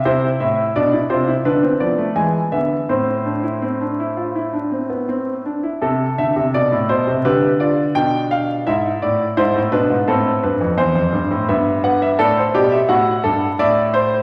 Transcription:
<<
  \new Staff \with { instrumentName = "Grand piano" } { \time 4/4 \key a \minor \tempo 4 = 85 << { c''8 e''8 d''8 c''8 b'8 d''8 gis''8 e''8 | c''2.~ c''8 r8 | r8 e''8 d''8 c''8 b'8 d''8 g''8 f''8 | e''8 d''8 c''8 b'8 a'8 b'8 c''4 |
e''8 fis''16 e''16 d''16 c''16 d''16 e''16 fis''4 e''4 | } \\ { e'4 d'16 e'16 f'16 e'16 d'16 c'16 b16 a16 gis8 b8 | c'8 d'16 e'16 c'16 d'16 e'16 f'16 e'16 d'16 c'16 b16 c'8 d'16 e'16 | a'2 g'8 f'8 d'4 | e'4 e'8 d'8 c'2 |
b8 b'8 a'8 g'8 fis'8 a'8 d''8 c''8 | } >> }
  \new Staff \with { instrumentName = "Grand piano" } { \clef bass \time 4/4 \key a \minor c8 a,8 b,8 c8 d8 f8 e8 d8 | a,2.~ a,8 r8 | c8 d16 c16 b,16 a,16 b,16 c16 d4 b,4 | gis,8 a,8 gis,16 a,16 b,16 gis,16 a,8 g,16 f,16 e,16 f,16 g,16 a,16 |
g,4 a,8 b,8 a,8 g,8 a,4 | }
>>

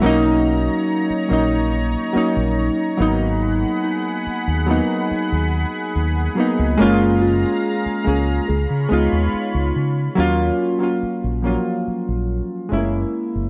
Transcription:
<<
  \new Staff \with { instrumentName = "Analog synth pad" } { \time 4/4 \key dis \minor \tempo 4 = 71 << { <cis'' ais''>2.~ <cis'' ais''>8 <fis'' b''>8~ | <fis'' b''>1 | <eis'' ais''>2 <cis'' b''>2 | r1 | } \\ { dis'2.~ dis'8 gis'8~ | gis'1~ | gis'2 eis'2 | r1 | } >> }
  \new Staff \with { instrumentName = "Synth bell" } { \time 4/4 \key dis \minor r1 | r8 dis'4~ dis'16 r2 r16 | r8 eis'4~ eis'16 r16 gis'4~ gis'16 r8. | r1 | }
  \new Staff \with { instrumentName = "Synth keys" } { \time 4/4 \key dis \minor <fis ais cis' dis'>4~ <fis ais cis' dis'>16 r16 <fis ais cis' dis'>8. r16 <fis ais cis' dis'>4 <fis ais b dis'>8~ | <fis ais b dis'>4~ <fis ais b dis'>16 r16 <fis ais b dis'>4.~ <fis ais b dis'>16 r16 <fis ais b dis'>8 | <gis ais cis' eis'>4~ <gis ais cis' eis'>16 r16 <gis ais cis' gis'>8 r8 <gis b dis' eis'>4~ <gis b dis' eis'>16 r16 | <fis ais cis' eis'>8. <fis ais cis' eis'>8. <eis fis ais cis' eis'>4. <gis a ais cis' e'>8. r16 | }
  \new Staff \with { instrumentName = "Fingered electric bass" } { \clef bass \time 4/4 \key dis \minor b,,4 r8 ais,,4 r16 ais,,8 r16 gis,,8~ | gis,,8 r8. dis,8 r8 dis,8 r16 dis,8 r16 cis,16 | fis,,4 r8 cis,8 cis,16 cis16 cis,16 dis,16 r16 cis,16 cis8 | dis,8 r8. ais,,8 r8 ais,,8 r16 fis,,8 r16 fis,,16 | }
>>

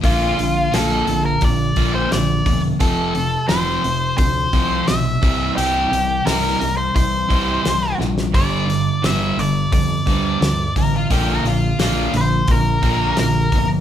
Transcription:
<<
  \new Staff \with { instrumentName = "Lead electric guitar" } { \time 4/4 \key bes \lydian \tempo 4 = 87 f'4 a'8. bes'16 d''8. c''16 d''8. r16 | a'4 c''4 c''4 e''4 | g'4 bes'8. c''16 c''4. r8 | d''4 e''8 d''8 d''4. r8 |
r4. c''8 bes'4 bes'8. r16 | }
  \new Staff \with { instrumentName = "Lead electric guitar" } { \time 4/4 \key bes \lydian r1 | r1 | r1 | r2. r8 bes'16 f'16 |
g'16 bes'16 f'8 f'8 r2 r8 | }
  \new Staff \with { instrumentName = "Distorted electric guitar" } { \clef bass \time 4/4 \key bes \lydian <bes, f bes>8 <bes, f>8 <bes, f bes>8 <bes, f>8 <bes, f>8 <bes, f bes>8 <bes, f>8 <bes, f>8 | <f, c f>8 <f, c>8 <f, c f>8 <f, c>8 <f, c>8 <f, c f>8 <f, c>8 <c g c'>8 | <c g c'>8 <c g>8 <c g c'>8 <c g>8 <c g>8 <c g c'>8 <c g>8 <c g>8 | <g, d g>8 <g, d>8 <g, d g>8 <g, d>8 <g, d>8 <g, d g>8 <g, d>8 <g, d>8 |
<bes, f bes>8 <bes, f>8 <bes, f bes>8 <bes, f>8 <bes, f>8 <bes, f bes>8 <bes, f>8 <bes, f>8 | }
  \new Staff \with { instrumentName = "Overdriven electric guitar" } { \clef bass \time 4/4 \key bes \lydian <bes, d bes>8 <bes, d>8 <bes, d bes>8 <bes, d>8 <bes, d>8 <bes, d bes>8 <bes, d>8 <bes, d>8 | <f, c f>8 <f, c>8 <f, c f>8 <f, c>8 <f, c>8 <f, c f>8 <f, c>8 <c e g>8 | <c e g>8 <c e>8 <c e g>8 <c e>8 <c e>8 <c e g>8 <c e>8 <c e>8 | <g, d g>8 <g, d>8 <g, d g>8 <g, d>8 <g, d>8 <g, d g>8 <g, d>8 <g, d>8 |
<bes, d bes>8 <bes, d>8 <bes, d bes>8 <bes, d>8 <bes, d>8 <bes, d bes>8 <bes, d>8 <bes, d>8 | }
  \new Staff \with { instrumentName = "Fingered electric bass" } { \clef bass \time 4/4 \key bes \lydian bes,,8 bes,,8 bes,,8 bes,,8 bes,,8 bes,,8 bes,,8 e,,8 | f,,4 f,,8 f,,8 d,8 c,8 b,,8 c,8 | c,8 c,8 c,8 c,8 c,8 c,8 c,8 bes,,8 | g,,4 g,,8 g,,8 f,8 d,8 d,8 a,,8 |
bes,,8 bes,,8 bes,,8 bes,,8 bes,,8 bes,,8 bes,,8 g,,8 | }
  \new DrumStaff \with { instrumentName = "Drums" } \drummode { \time 4/4 <hho bd>8 hho8 <hho sn>8 hho8 <hho bd>8 <hho bd>8 <hho sn>8 <hho bd>8 | <hho bd>8 hho8 <hho sn>8 hho8 <hho bd>8 <hho bd>8 <hho sn>8 <hho bd>8 | hho8 hho8 <hho sn>8 hho8 <hho bd>8 <hho bd>8 <hho sn>8 sn16 sn16 | <hho bd>8 hho8 <hho sn>8 hho8 <hho bd>8 <hho bd>8 <hho sn>8 <hho bd>8 |
<hho bd>8 hho8 <hho sn>8 hho8 <hho bd>8 <hho bd>8 <hho sn>8 <hho bd>8 | }
>>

